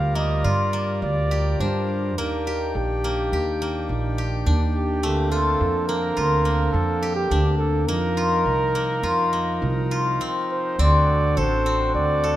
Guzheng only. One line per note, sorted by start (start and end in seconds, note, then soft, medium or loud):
0.00 0.15 A#3 medium
0.00 1.70 C4 medium
0.00 0.44 F4 medium
0.00 1.31 G4 medium
0.15 0.73 A#3 medium
0.44 2.97 F4 medium
0.73 2.18 A#3 medium
1.31 2.47 G4 medium
1.60 4.40 D4 medium
2.18 3.04 A#3 medium
2.47 3.33 G4 medium
3.04 3.61 A#3 medium
3.33 4.18 G4 medium
3.62 5.09 A#3 medium
4.18 6.54 G4 medium
4.46 7.26 D4 medium
5.03 5.95 A3 medium
5.32 6.16 F4 medium
5.89 6.45 A#3 medium
6.17 8.17 F4 medium
6.45 7.88 A#3 medium
7.03 9.38 G4 medium
7.31 10.11 D4 medium
7.88 8.75 A#3 medium
8.17 9.03 F4 medium
8.75 9.32 A#3 medium
9.03 9.91 F4 medium
9.33 11.43 A#3 medium
9.91 12.36 F4 medium
10.21 10.79 C4 medium
10.79 11.66 C4 medium
11.37 12.23 A4 medium
11.66 12.36 C4 medium
12.24 12.36 A4 medium